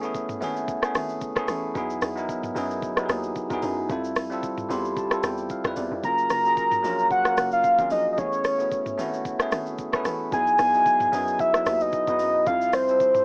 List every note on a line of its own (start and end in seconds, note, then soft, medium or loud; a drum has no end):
0.00 0.37 A1 loud
0.00 0.40 A3 medium
0.00 0.02 B3 medium
0.00 0.34 B3 medium
0.00 0.03 C#4 medium
0.00 0.34 C#4 medium
0.00 0.04 E4 medium
0.00 0.05 G#4 loud
0.00 shaker medium
0.04 0.35 E4 medium
0.04 0.35 G#4 loud
0.14 kick loud
0.14 shaker medium
0.29 mid tom loud
0.29 shaker medium
0.40 0.81 G#1 medium
0.40 0.73 A3 medium
0.40 0.74 B3 medium
0.40 0.74 C#4 medium
0.40 0.75 E4 medium
0.40 0.75 G#4 loud
0.40 open hi-hat medium
0.40 shaker medium
0.56 shaker medium
0.68 kick loud
0.68 shaker medium
0.82 1.24 A3 medium
0.82 1.24 B3 medium
0.82 1.25 C#4 medium
0.82 1.25 E4 medium
0.82 1.26 G#4 loud
0.82 cross-stick loud
0.82 shaker medium
0.95 1.46 G#1 loud
0.95 cross-stick loud
0.95 open hi-hat medium
0.95 shaker loud
1.09 shaker medium
1.21 kick loud
1.21 shaker medium
1.35 1.67 A3 loud
1.35 1.68 B3 medium
1.35 1.68 C#4 medium
1.35 1.69 E4 medium
1.35 1.69 G#4 loud
1.35 kick loud
1.35 cross-stick loud
1.35 shaker medium
1.48 1.74 A1 loud
1.48 cross-stick medium
1.48 open hi-hat medium
1.48 shaker medium
1.74 2.01 E2 loud
1.74 2.07 F#3 medium
1.74 2.08 B3 medium
1.74 2.08 D#4 medium
1.74 2.08 E4 medium
1.74 2.09 G#4 loud
1.74 kick loud
1.74 shaker medium
1.90 shaker medium
2.02 2.54 E2 loud
2.02 cross-stick medium
2.02 open hi-hat medium
2.02 shaker medium
2.16 2.48 F#3 medium
2.16 2.48 B3 medium
2.16 2.49 D#4 medium
2.16 2.49 E4 medium
2.16 2.49 A#4 loud
2.16 shaker medium
2.29 kick loud
2.29 shaker medium
2.43 mid tom loud
2.43 shaker medium
2.54 3.07 F#2 loud
2.54 2.88 F#3 loud
2.54 2.88 B3 medium
2.54 2.88 D#4 medium
2.54 2.89 E4 medium
2.54 2.89 G#4 loud
2.54 open hi-hat medium
2.54 shaker medium
2.71 shaker medium
2.82 kick loud
2.82 shaker medium
2.96 3.38 F#3 medium
2.96 3.39 B3 medium
2.96 3.39 D#4 medium
2.96 3.40 E4 medium
2.96 3.04 G4 medium
2.96 cross-stick loud
2.96 shaker medium
3.06 3.35 D#2 loud
3.06 3.43 G#4 medium
3.06 cross-stick loud
3.06 open hi-hat medium
3.06 shaker loud
3.23 shaker medium
3.35 kick medium
3.35 shaker medium
3.50 3.62 E2 medium
3.50 3.82 F#3 loud
3.50 3.82 B3 medium
3.50 3.83 D#4 medium
3.50 3.83 E4 medium
3.50 3.83 G#4 loud
3.50 kick loud
3.50 shaker medium
3.62 3.88 F#2 loud
3.62 open hi-hat medium
3.62 shaker medium
3.89 4.66 F2 loud
3.89 4.22 G3 medium
3.89 4.22 C4 medium
3.89 4.22 E4 medium
3.89 4.23 F4 medium
3.89 4.23 A4 loud
3.89 kick loud
3.89 shaker medium
4.04 shaker medium
4.16 cross-stick medium
4.16 open hi-hat medium
4.16 shaker medium
4.30 4.62 G3 medium
4.30 4.62 C4 medium
4.30 4.63 E4 medium
4.30 4.63 F4 medium
4.30 4.64 A4 loud
4.30 shaker medium
4.43 kick loud
4.43 shaker medium
4.57 mid tom loud
4.57 shaker medium
4.69 5.10 E2 loud
4.69 5.02 G3 medium
4.69 5.02 C4 medium
4.69 5.03 E4 medium
4.69 5.03 F4 medium
4.69 5.04 G4 loud
4.69 4.95 C6 medium
4.69 open hi-hat medium
4.69 shaker medium
4.85 shaker medium
4.97 5.22 A5 medium
4.97 kick loud
4.97 shaker medium
5.10 5.52 G3 medium
5.10 5.53 C4 medium
5.10 5.53 E4 medium
5.10 5.54 F4 medium
5.10 5.54 A4 loud
5.10 cross-stick loud
5.10 shaker medium
5.23 5.49 E2 loud
5.23 5.49 G5 medium
5.23 cross-stick loud
5.23 open hi-hat medium
5.23 shaker loud
5.38 shaker medium
5.50 5.75 F5 medium
5.50 kick medium
5.50 shaker medium
5.64 5.76 F2 medium
5.64 5.96 G3 loud
5.64 5.96 C4 medium
5.64 5.97 E4 medium
5.64 5.97 F4 medium
5.64 5.98 B4 loud
5.64 kick loud
5.64 cross-stick loud
5.64 shaker medium
5.76 5.91 E2 loud
5.76 6.02 D5 medium
5.76 open hi-hat medium
5.76 shaker medium
5.92 6.03 F2 medium
6.03 6.30 F#1 loud
6.03 6.36 F#3 medium
6.03 6.36 A#3 medium
6.03 6.37 C#4 medium
6.03 6.37 F4 medium
6.03 6.38 G#4 medium
6.03 7.07 A#5 loud
6.03 kick loud
6.03 shaker medium
6.18 shaker medium
6.30 6.82 F#1 loud
6.30 cross-stick medium
6.30 open hi-hat medium
6.30 shaker medium
6.44 6.76 F#3 medium
6.44 6.77 A#3 medium
6.44 6.77 C#4 medium
6.44 6.78 F4 medium
6.44 6.78 G#4 medium
6.44 shaker medium
6.57 kick loud
6.57 shaker medium
6.72 mid tom loud
6.72 shaker medium
6.83 7.36 A#1 medium
6.83 7.16 F#3 medium
6.83 7.17 A#3 medium
6.83 7.17 C#4 medium
6.83 7.17 F4 medium
6.83 7.18 A#4 loud
6.83 open hi-hat medium
6.83 shaker medium
6.99 shaker medium
7.11 7.50 F#5 loud
7.11 kick loud
7.11 shaker medium
7.25 7.67 F#3 medium
7.25 7.67 A#3 medium
7.25 7.68 C#4 medium
7.25 7.68 F4 medium
7.25 7.69 A#4 medium
7.25 cross-stick loud
7.25 shaker medium
7.38 7.63 F#1 loud
7.38 cross-stick loud
7.38 open hi-hat medium
7.38 shaker loud
7.52 7.89 F5 loud
7.52 shaker medium
7.64 kick medium
7.64 shaker medium
7.78 7.91 G#1 loud
7.78 8.10 F#3 medium
7.78 8.11 A#3 medium
7.78 8.11 C#4 medium
7.78 8.12 F4 medium
7.78 8.12 G#4 medium
7.78 kick loud
7.78 shaker medium
7.91 8.17 A#1 medium
7.91 8.11 D#5 medium
7.91 open hi-hat medium
7.91 shaker medium
8.13 8.20 D#5 medium
8.17 8.94 A1 loud
8.17 8.50 A3 medium
8.17 8.51 B3 medium
8.17 8.51 C#4 medium
8.17 8.51 E4 medium
8.17 8.52 G#4 medium
8.17 8.99 C#5 medium
8.17 kick loud
8.17 shaker medium
8.33 shaker medium
8.44 cross-stick medium
8.44 open hi-hat medium
8.44 shaker medium
8.58 8.91 A3 medium
8.58 8.91 B3 medium
8.58 8.91 C#4 medium
8.58 8.92 E4 medium
8.58 8.92 F#4 medium
8.58 shaker medium
8.72 kick loud
8.72 shaker medium
8.86 mid tom loud
8.86 shaker medium
8.97 9.38 G#1 medium
8.97 9.30 A3 medium
8.97 9.31 B3 medium
8.97 9.31 C#4 medium
8.97 9.32 E4 medium
8.97 9.32 F#4 loud
8.97 open hi-hat medium
8.97 shaker medium
9.13 shaker medium
9.25 kick loud
9.25 shaker medium
9.39 9.81 A3 medium
9.39 9.82 B3 medium
9.39 9.82 C#4 medium
9.39 9.82 E4 medium
9.39 9.83 G#4 loud
9.39 cross-stick loud
9.39 shaker medium
9.52 10.04 G#1 loud
9.52 cross-stick loud
9.52 open hi-hat medium
9.52 shaker medium
9.66 shaker medium
9.78 kick medium
9.78 shaker medium
9.92 10.24 A3 loud
9.92 10.25 B3 medium
9.92 10.25 C#4 medium
9.92 10.26 E4 medium
9.92 10.26 B4 loud
9.92 kick loud
9.92 cross-stick loud
9.92 shaker medium
10.05 10.31 A1 loud
10.05 cross-stick medium
10.05 open hi-hat medium
10.05 shaker medium
10.31 10.58 E2 loud
10.31 10.64 F#3 medium
10.31 10.65 B3 medium
10.31 10.65 D#4 medium
10.31 10.66 E4 medium
10.31 10.66 G#4 medium
10.31 11.42 G#5 loud
10.31 kick loud
10.31 shaker medium
10.47 shaker medium
10.58 11.11 E2 loud
10.58 cross-stick medium
10.58 open hi-hat medium
10.58 shaker medium
10.73 11.05 F#3 medium
10.73 11.05 B3 medium
10.73 11.06 D#4 medium
10.73 11.06 E4 medium
10.73 11.07 F#4 medium
10.73 shaker medium
10.86 kick loud
10.86 shaker medium
11.00 mid tom loud
11.00 shaker medium
11.12 11.64 F#2 medium
11.12 11.45 F#3 medium
11.12 11.45 B3 medium
11.12 11.46 D#4 medium
11.12 11.46 E4 medium
11.12 11.47 G#4 loud
11.12 open hi-hat medium
11.12 shaker medium
11.28 shaker medium
11.39 11.83 E5 loud
11.39 kick loud
11.39 shaker medium
11.53 11.95 F#3 medium
11.53 11.96 B3 medium
11.53 11.96 D#4 medium
11.53 11.97 E4 medium
11.53 11.97 B4 medium
11.53 cross-stick loud
11.53 shaker medium
11.66 11.92 D#2 medium
11.66 cross-stick loud
11.66 open hi-hat medium
11.66 shaker medium
11.80 12.46 D#5 loud
11.80 shaker medium
11.92 kick medium
11.92 shaker medium
12.07 12.21 E2 medium
12.07 12.39 F#3 medium
12.07 12.39 B3 medium
12.07 12.40 D#4 medium
12.07 12.40 E4 medium
12.07 12.41 B4 medium
12.07 kick loud
12.07 shaker medium
12.19 12.46 F#2 loud
12.19 open hi-hat medium
12.19 shaker medium
12.46 13.23 F2 loud
12.46 12.79 G3 medium
12.46 12.79 C4 medium
12.46 12.80 E4 medium
12.46 12.80 F4 medium
12.46 12.80 A4 medium
12.46 12.76 F5 loud
12.46 kick loud
12.46 shaker medium
12.61 shaker medium
12.73 13.25 C5 loud
12.73 cross-stick medium
12.73 open hi-hat medium
12.73 shaker loud
12.87 13.19 G3 medium
12.87 13.20 C4 medium
12.87 13.20 E4 medium
12.87 13.20 F4 medium
12.87 13.21 A4 medium
12.87 shaker medium
13.00 kick loud
13.00 shaker medium
13.15 mid tom loud
13.15 shaker medium